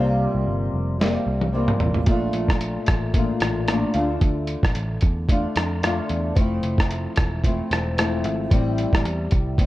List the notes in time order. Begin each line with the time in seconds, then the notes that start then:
Already playing: C2 C3 G3 A#3 F4
0.35 C2
0.46 G1
0.74 F1
1.00 C3 G3 A#3 F4, snare
1.27 C2
1.41 high tom
1.53 C3 G3 A#3 F4
1.68 mid tom
1.80 A1, floor tom
1.94 floor tom
2.06 A#1 A#2 A3 D4, kick, closed hi-hat
2.11 F4
2.33 A#1, closed hi-hat
2.48 kick, cross-stick
2.61 closed hi-hat
2.86 A1, kick, cross-stick, closed hi-hat
3.14 A#2 A3 D4, kick, closed hi-hat
3.18 F4
3.40 A1, cross-stick, closed hi-hat
3.68 A#2 A3 D4 F4, cross-stick, closed hi-hat
3.94 D2 D4 F4, closed hi-hat
3.98 D3 A3
4.21 D2, kick, closed hi-hat
4.47 closed hi-hat
4.63 A#1, kick, cross-stick
4.75 A1, closed hi-hat
5.01 E2, kick, closed hi-hat
5.29 D3 A3 D4 F4, kick, closed hi-hat
5.56 F2, cross-stick, closed hi-hat
5.82 D3 A3 D4 F4, cross-stick, closed hi-hat
6.09 E2, closed hi-hat
6.35 F1 F3 A3 C4, kick, closed hi-hat
6.41 E4
6.63 F1, closed hi-hat
6.78 kick, cross-stick
6.91 closed hi-hat
7.16 E1, kick, cross-stick, closed hi-hat
7.44 F3 A3 C4 E4, kick, closed hi-hat
7.71 E1, cross-stick, closed hi-hat
7.97 F3 A3 C4 E4, cross-stick, closed hi-hat
8.24 G#1, closed hi-hat
8.50 A1 A2 G3 C4, kick, closed hi-hat
8.55 E4
8.78 closed hi-hat
8.93 A1, kick, cross-stick
9.05 E2, closed hi-hat
9.31 C2, kick, closed hi-hat
9.58 A2 G3 C4 E4, kick, closed hi-hat